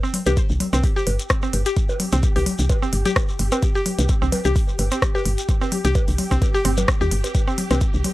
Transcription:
0.00 0.07 C4 medium
0.00 8.13 G4 medium
0.00 shekere soft
0.14 open hi-hat medium
0.14 open hi-hat loud
0.14 low conga medium
0.26 0.35 C2 loud
0.26 0.33 G4 medium
0.26 closed hi-hat medium
0.26 low bongo medium
0.26 shekere medium
0.37 kick loud
0.37 closed hi-hat soft
0.37 shekere medium
0.49 0.59 C2 medium
0.49 shekere soft
0.60 open hi-hat medium
0.60 open hi-hat loud
0.60 low conga loud
0.73 0.82 C2 medium
0.73 0.77 C4 medium
0.73 open hi-hat soft
0.73 low bongo soft
0.73 shekere medium
0.83 kick loud
0.83 open hi-hat soft
0.83 shekere medium
0.96 1.02 G4 medium
0.96 shekere soft
1.07 1.18 G1 medium
1.07 open hi-hat medium
1.07 low bongo medium
1.20 closed hi-hat medium
1.20 shekere medium
1.30 kick loud
1.30 cross-stick loud
1.30 closed hi-hat soft
1.30 shekere medium
1.42 1.47 C4 medium
1.42 shekere soft
1.53 1.64 G1 medium
1.53 open hi-hat medium
1.53 open hi-hat loud
1.53 low bongo soft
1.66 1.72 G4 medium
1.66 closed hi-hat medium
1.66 shekere medium
1.77 kick loud
1.77 closed hi-hat soft
1.77 shekere medium
1.89 low bongo medium
1.89 shekere soft
2.00 open hi-hat medium
2.00 open hi-hat loud
2.00 low conga medium
2.12 2.22 C2 loud
2.12 2.17 C4 medium
2.12 closed hi-hat medium
2.12 shekere medium
2.23 kick loud
2.23 closed hi-hat soft
2.23 shekere medium
2.36 2.45 C2 medium
2.36 2.42 G4 medium
2.36 open hi-hat medium
2.36 low bongo soft
2.36 shekere soft
2.46 open hi-hat medium
2.46 open hi-hat loud
2.46 low conga loud
2.59 2.68 C2 medium
2.59 open hi-hat soft
2.59 shekere medium
2.69 kick loud
2.69 closed hi-hat soft
2.69 low bongo medium
2.69 shekere medium
2.82 2.86 C4 medium
2.82 shekere soft
2.93 3.04 G1 medium
2.93 open hi-hat medium
2.93 open hi-hat loud
3.06 3.12 G4 medium
3.06 closed hi-hat medium
3.06 low conga loud
3.06 shekere medium
3.16 kick loud
3.16 cross-stick loud
3.16 closed hi-hat soft
3.16 low bongo soft
3.16 shekere medium
3.29 shekere soft
3.39 3.50 G1 medium
3.39 open hi-hat medium
3.39 open hi-hat loud
3.52 3.56 C4 medium
3.52 closed hi-hat medium
3.52 low bongo medium
3.52 shekere medium
3.63 kick loud
3.63 closed hi-hat soft
3.63 shekere medium
3.75 3.81 G4 medium
3.75 shekere soft
3.86 open hi-hat medium
3.86 open hi-hat loud
3.86 low conga medium
3.99 4.08 C2 loud
3.99 closed hi-hat medium
3.99 low bongo soft
3.99 shekere medium
4.09 kick loud
4.09 closed hi-hat soft
4.09 shekere medium
4.22 4.31 C2 medium
4.22 4.26 C4 medium
4.22 shekere soft
4.32 open hi-hat medium
4.32 open hi-hat loud
4.32 low bongo medium
4.32 low conga medium
4.45 4.54 C2 medium
4.45 4.51 G4 medium
4.45 open hi-hat soft
4.45 shekere medium
4.56 kick loud
4.56 open hi-hat soft
4.56 shekere medium
4.68 shekere soft
4.79 4.90 G1 medium
4.79 open hi-hat medium
4.79 open hi-hat loud
4.79 low bongo soft
4.91 4.96 C4 medium
4.91 closed hi-hat medium
4.91 shekere medium
5.02 kick loud
5.02 cross-stick loud
5.02 closed hi-hat soft
5.02 shekere medium
5.15 5.21 G4 medium
5.15 low bongo medium
5.15 shekere soft
5.25 5.36 G1 medium
5.25 open hi-hat medium
5.25 open hi-hat loud
5.38 closed hi-hat medium
5.38 shekere medium
5.49 kick loud
5.49 closed hi-hat soft
5.49 shekere medium
5.61 5.65 C4 medium
5.61 low bongo soft
5.61 shekere soft
5.72 open hi-hat medium
5.72 open hi-hat loud
5.72 low conga medium
5.85 5.94 C2 loud
5.85 5.91 G4 medium
5.85 closed hi-hat medium
5.85 shekere medium
5.95 kick loud
5.95 closed hi-hat soft
5.95 low bongo medium
5.95 shekere medium
6.08 6.17 C2 medium
6.08 open hi-hat soft
6.08 shekere soft
6.18 open hi-hat medium
6.18 open hi-hat loud
6.18 low conga medium
6.31 6.40 C2 medium
6.31 6.35 C4 medium
6.31 kick medium
6.31 open hi-hat soft
6.31 shekere medium
6.42 kick loud
6.42 closed hi-hat soft
6.42 low bongo soft
6.42 shekere medium
6.54 6.60 G4 medium
6.54 shekere soft
6.65 6.85 G1 medium
6.65 6.72 C4 medium
6.65 open hi-hat medium
6.65 open hi-hat loud
6.77 closed hi-hat soft
6.77 low bongo medium
6.77 low conga medium
6.77 shekere medium
6.88 kick loud
6.88 cross-stick loud
6.88 closed hi-hat soft
6.88 shekere medium
7.01 7.10 D#2 loud
7.01 7.03 G4 medium
7.01 shekere soft
7.11 7.22 G1 medium
7.11 open hi-hat medium
7.11 open hi-hat loud
7.24 closed hi-hat medium
7.24 low bongo soft
7.24 shekere medium
7.35 kick loud
7.35 closed hi-hat soft
7.35 low bongo soft
7.35 shekere medium
7.48 7.51 C4 medium
7.48 shekere soft
7.58 open hi-hat medium
7.58 open hi-hat loud
7.58 low conga medium
7.71 7.80 C2 loud
7.71 7.75 C4 medium
7.71 closed hi-hat medium
7.71 low bongo medium
7.71 shekere medium
7.81 kick loud
7.81 closed hi-hat soft
7.81 shekere medium
7.94 8.03 C2 medium
7.94 shekere soft
8.04 open hi-hat medium
8.04 open hi-hat loud
8.04 low conga medium

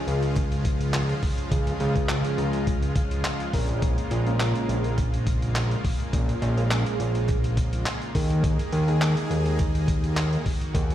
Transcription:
0.00 8.11 C#3 medium
0.00 3.50 F3 medium
0.00 10.95 G#3 medium
0.00 0.43 C#4 medium
0.00 0.43 F4 medium
0.00 8.11 F4 medium
0.00 0.43 G#4 loud
0.08 1.15 C#2 medium
0.08 closed hi-hat medium
0.23 closed hi-hat medium
0.36 kick loud
0.36 clap medium
0.36 closed hi-hat medium
0.52 closed hi-hat medium
0.65 kick loud
0.65 closed hi-hat medium
0.81 closed hi-hat medium
0.94 clap loud
0.94 closed hi-hat loud
1.09 closed hi-hat soft
1.23 kick loud
1.23 open hi-hat medium
1.38 closed hi-hat medium
1.51 1.73 C#2 loud
1.51 1.76 C#4 medium
1.51 1.76 F4 medium
1.51 1.76 G#4 loud
1.51 kick loud
1.51 closed hi-hat loud
1.67 closed hi-hat medium
1.80 2.23 C#2 loud
1.80 closed hi-hat medium
1.96 2.03 C#4 medium
1.96 2.03 F4 medium
1.96 2.04 G#4 loud
1.96 kick medium
1.96 closed hi-hat medium
2.09 2.74 C#4 medium
2.09 2.74 F4 medium
2.09 2.74 G#4 loud
2.09 clap loud
2.09 clap medium
2.09 closed hi-hat loud
2.25 closed hi-hat medium
2.38 3.24 C#2 medium
2.38 2.65 A#5 medium
2.38 closed hi-hat medium
2.53 closed hi-hat medium
2.67 2.94 G#5 medium
2.67 kick loud
2.67 closed hi-hat medium
2.82 closed hi-hat medium
2.96 3.23 F5 medium
2.96 kick loud
2.96 closed hi-hat medium
3.11 closed hi-hat medium
3.24 3.78 F5 medium
3.24 clap medium
3.24 clap loud
3.24 closed hi-hat loud
3.40 closed hi-hat soft
3.53 3.96 A#1 loud
3.53 4.11 G#3 medium
3.53 4.11 A#3 medium
3.53 8.11 A#3 medium
3.53 4.11 C#4 medium
3.53 4.11 F4 medium
3.53 4.11 A#4 loud
3.53 kick medium
3.53 open hi-hat medium
3.69 closed hi-hat medium
3.82 kick loud
3.82 closed hi-hat medium
3.98 closed hi-hat medium
4.11 4.54 A#1 loud
4.11 closed hi-hat medium
4.27 4.34 G#3 medium
4.27 4.34 A#3 medium
4.27 4.34 C#4 medium
4.27 4.34 F4 medium
4.27 4.34 A#4 loud
4.27 closed hi-hat medium
4.40 5.05 G#3 medium
4.40 5.05 A#3 medium
4.40 5.05 C#4 medium
4.40 5.05 F4 medium
4.40 5.05 A#4 loud
4.40 clap loud
4.40 clap medium
4.40 closed hi-hat loud
4.55 closed hi-hat medium
4.69 5.76 A#1 medium
4.69 closed hi-hat medium
4.84 closed hi-hat medium
4.98 kick loud
4.98 clap medium
4.98 closed hi-hat medium
5.14 closed hi-hat medium
5.27 kick medium
5.27 closed hi-hat medium
5.42 closed hi-hat medium
5.55 clap loud
5.55 clap medium
5.55 closed hi-hat loud
5.71 closed hi-hat soft
5.85 kick loud
5.85 open hi-hat medium
6.00 closed hi-hat medium
6.13 6.35 A#1 loud
6.13 6.37 G#3 medium
6.13 6.37 A#3 medium
6.13 6.37 C#4 medium
6.13 6.38 F4 medium
6.13 6.38 A#4 medium
6.13 kick loud
6.13 closed hi-hat loud
6.29 closed hi-hat medium
6.42 6.85 A#1 loud
6.42 closed hi-hat medium
6.57 6.65 G#3 medium
6.57 6.65 A#3 medium
6.57 6.65 C#4 medium
6.57 6.65 F4 medium
6.57 6.65 A#4 loud
6.57 closed hi-hat medium
6.71 7.35 G#3 medium
6.71 7.35 A#3 medium
6.71 7.35 C#4 medium
6.71 7.35 F4 medium
6.71 7.36 G#4 loud
6.71 clap medium
6.71 clap loud
6.71 closed hi-hat loud
6.86 closed hi-hat medium
7.00 7.85 A#1 medium
7.00 closed hi-hat medium
7.15 closed hi-hat medium
7.29 kick loud
7.29 clap medium
7.29 closed hi-hat medium
7.44 closed hi-hat medium
7.57 kick loud
7.57 closed hi-hat medium
7.73 closed hi-hat medium
7.86 clap loud
7.86 clap medium
7.86 closed hi-hat loud
8.02 closed hi-hat soft
8.15 8.58 D#2 loud
8.15 10.95 D#3 medium
8.15 8.73 A#3 medium
8.15 10.95 A#3 medium
8.15 8.73 D#4 medium
8.15 10.44 G#4 medium
8.15 8.73 G#4 loud
8.15 kick loud
8.15 open hi-hat medium
8.30 closed hi-hat medium
8.44 kick loud
8.44 closed hi-hat medium
8.59 closed hi-hat medium
8.72 9.16 D#2 loud
8.72 closed hi-hat medium
8.88 8.95 A#3 medium
8.88 8.96 D#4 medium
8.88 8.96 G#4 loud
8.88 closed hi-hat medium
9.01 9.66 A#3 medium
9.01 9.66 D#4 medium
9.01 9.66 G#4 loud
9.01 clap medium
9.01 clap loud
9.01 closed hi-hat loud
9.17 closed hi-hat medium
9.30 10.37 D#2 loud
9.30 closed hi-hat medium
9.46 closed hi-hat medium
9.59 kick loud
9.59 clap medium
9.59 closed hi-hat medium
9.75 closed hi-hat medium
9.88 kick loud
9.88 closed hi-hat medium
10.04 closed hi-hat medium
10.17 clap medium
10.17 clap loud
10.17 closed hi-hat loud
10.33 closed hi-hat soft
10.46 10.95 F#4 medium
10.46 kick loud
10.46 open hi-hat medium
10.61 closed hi-hat medium
10.74 10.95 D#2 loud
10.74 10.95 A#3 medium
10.74 10.95 D#4 medium
10.74 10.95 G#4 loud
10.74 kick loud
10.74 closed hi-hat loud
10.90 closed hi-hat medium

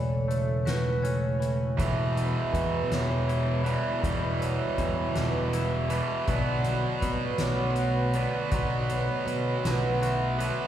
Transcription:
0.00 1.75 E1 medium
0.00 1.75 C#3 medium
0.00 1.39 E3 medium
0.00 1.75 A3 medium
0.00 1.76 E4 medium
0.00 0.29 F#4 medium
0.00 1.75 A4 medium
0.00 0.66 C#5 medium
0.28 1.78 A3 medium
0.28 closed hi-hat soft
0.65 1.78 F#4 medium
0.65 1.03 B4 medium
0.65 snare medium
0.65 closed hi-hat medium
1.03 1.78 C#4 medium
1.03 1.78 C#5 medium
1.03 closed hi-hat soft
1.40 1.78 E3 soft
1.40 closed hi-hat medium
1.77 2.35 E1 medium
1.77 3.63 E2 medium
1.77 3.65 E2 medium
1.77 3.63 B2 medium
1.77 10.67 D3 medium
1.77 3.62 E3 medium
1.77 6.23 G3 medium
1.77 6.23 E4 medium
1.77 10.67 B4 medium
1.77 2.53 E5 medium
1.77 kick medium
1.77 closed hi-hat medium
2.16 4.03 B2 medium
2.16 closed hi-hat soft
2.52 2.82 E2 medium
2.52 4.40 E3 medium
2.52 2.90 B4 medium
2.52 kick medium
2.52 closed hi-hat soft
2.89 3.75 E1 medium
2.89 3.65 D4 soft
2.89 3.65 C#5 medium
2.89 snare medium
2.89 closed hi-hat medium
3.28 5.15 E4 medium
3.28 closed hi-hat soft
3.63 4.00 E2 medium
3.63 4.00 B2 medium
3.63 4.00 E3 medium
3.63 5.15 D4 soft
3.63 4.40 D5 medium
3.63 closed hi-hat soft
4.01 4.60 E1 medium
4.01 5.87 E2 medium
4.01 5.90 E2 medium
4.01 5.88 B2 medium
4.01 5.88 E3 medium
4.01 kick medium
4.01 closed hi-hat medium
4.40 6.28 B2 medium
4.40 5.15 C#5 medium
4.40 closed hi-hat medium
4.78 5.06 E2 medium
4.78 6.28 E3 medium
4.78 kick medium
4.78 closed hi-hat soft
5.15 6.00 E1 medium
5.15 5.89 D4 medium
5.15 5.53 B4 medium
5.15 snare medium
5.15 closed hi-hat medium
5.52 6.28 E4 medium
5.52 6.27 E5 medium
5.52 closed hi-hat medium
5.89 6.26 E2 medium
5.89 6.25 B2 medium
5.89 6.25 E3 medium
5.89 7.40 D4 soft
5.89 closed hi-hat medium
6.27 6.84 B1 medium
6.27 8.12 B2 medium
6.27 8.16 B2 medium
6.27 8.15 F#3 medium
6.27 10.67 A3 medium
6.27 8.14 B3 medium
6.27 10.67 F#4 medium
6.27 7.02 D5 medium
6.27 kick medium
6.27 closed hi-hat medium
6.64 7.03 F#3 medium
6.64 closed hi-hat medium
7.02 7.31 B2 medium
7.02 8.89 F#3 medium
7.02 7.40 B4 medium
7.02 kick medium
7.02 closed hi-hat medium
7.38 8.25 B1 medium
7.38 8.14 D4 medium
7.38 8.15 C#5 medium
7.38 snare medium
7.38 closed hi-hat medium
7.76 10.02 F#4 medium
7.76 closed hi-hat medium
8.13 8.53 F#3 medium
8.13 8.50 B3 medium
8.13 9.65 D4 soft
8.13 8.89 D5 medium
8.13 closed hi-hat medium
8.17 8.51 B2 soft
8.51 9.09 B1 medium
8.51 10.40 B2 medium
8.51 10.37 B2 medium
8.51 10.40 F#3 medium
8.51 10.37 B3 medium
8.51 kick medium
8.51 closed hi-hat medium
8.89 9.26 F#3 medium
8.89 9.65 C#5 medium
8.89 closed hi-hat medium
9.26 9.55 B2 medium
9.26 10.67 F#3 medium
9.26 closed hi-hat medium
9.63 10.50 B1 medium
9.63 10.40 D4 medium
9.63 10.02 B4 medium
9.63 snare medium
9.63 closed hi-hat medium
10.01 10.67 F#4 medium
10.01 10.67 E5 medium
10.01 closed hi-hat medium
10.38 10.67 B2 medium
10.38 10.67 F#3 medium
10.38 10.67 B3 medium
10.38 10.67 D4 soft
10.38 closed hi-hat soft

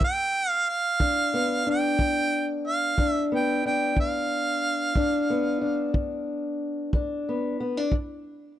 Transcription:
0.01 0.61 G2 medium
0.01 0.50 G5 loud
0.01 kick medium
0.50 0.69 F5 loud
0.69 1.67 F5 loud
1.00 1.59 G2 medium
1.00 1.66 D4 medium
1.00 kick medium
1.34 3.31 B3 medium
1.67 2.98 D4 medium
1.67 2.50 G5 loud
1.99 2.58 G2 medium
1.99 kick medium
2.67 3.10 F5 medium
2.98 3.57 G2 medium
2.98 3.65 D4 medium
2.98 kick medium
3.10 3.28 E5 medium
3.32 5.30 B3 medium
3.32 3.64 G5 medium
3.65 4.96 D4 medium
3.65 3.96 G5 medium
3.95 4.55 G2 medium
3.95 kick medium
4.00 5.92 F5 medium
4.95 5.55 G2 medium
4.95 5.61 D4 medium
4.95 kick medium
5.30 7.27 B3 medium
5.61 6.94 D4 medium
5.94 6.53 G2 medium
5.94 kick medium
6.93 7.52 G2 medium
6.93 7.60 D4 medium
6.93 kick medium
7.29 7.59 B3 medium
7.60 7.77 B3 medium
7.77 7.93 D4 medium
7.92 8.51 G2 medium
7.92 kick medium

